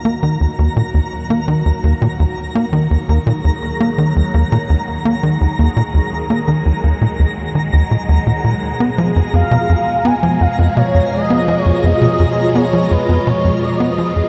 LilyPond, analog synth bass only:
\new Staff \with { instrumentName = "Analog synth bass" } { \clef bass \time 4/4 \key ees \minor \tempo 4 = 84 bes16 ees16 ees,16 ees,16 bes,16 ees,16 r16 bes16 ees16 ees,16 ees,16 bes,16 ees,16 r16 bes16 ees16 | ees,16 ees,16 bes,16 ees,16 r16 bes16 ees16 ees,16 ees,16 bes,16 ees,16 r16 bes16 ees16 ees,16 ees,16 | bes,16 ees,16 r16 bes16 ees16 ees,16 ees,16 bes,16 ees,16 r16 ees16 ees,16 bes,16 ees,16 bes,16 bes,16 | r16 ces'16 f16 f,16 f,16 ces16 f,16 r16 ces'16 f16 f,16 f,16 ces16 f,16 r16 ces'16 |
f16 f,16 f,16 ces16 f,16 r16 ces'16 f16 f,16 f,16 ces16 f,16 r16 ces'16 f16 f,16 | }